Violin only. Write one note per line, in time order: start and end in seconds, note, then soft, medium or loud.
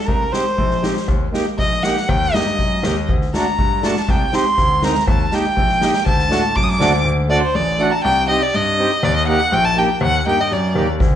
0.08 0.34 A#4 medium
0.32 1.08 C5 medium
1.59 1.85 D#5 medium
1.83 2.11 F#5 medium
2.10 2.35 G5 loud
2.34 3.08 D#5 loud
3.34 3.87 A#5 medium
3.86 4.11 A5 medium
4.10 4.36 G5 medium
4.35 4.85 C6 loud
4.84 5.08 A#5 medium
5.08 5.36 A5 medium
5.34 6.06 G5 loud
6.06 6.57 A5 loud
6.56 6.65 D6 medium
6.63 6.71 D#6 medium
6.69 7.05 D6 loud
7.30 7.41 D5 medium
7.42 7.57 C5 loud
7.55 7.82 D5 loud
7.81 7.91 F#5 medium
7.90 8.03 A5 loud
7.90 7.93 A#5 medium
8.04 8.27 G5 loud
8.30 8.44 D#5 medium
8.42 8.56 D5 loud
8.55 9.05 D#5 loud
9.04 9.16 D5 loud
9.16 9.27 D#5 medium
9.27 9.55 F#5 loud
9.53 9.66 G5 loud
9.65 9.80 A5 loud
9.78 10.02 G5 medium
10.03 10.25 F#5 loud
10.28 10.42 G5 medium
10.40 10.54 D#5 medium
10.52 10.89 D5 medium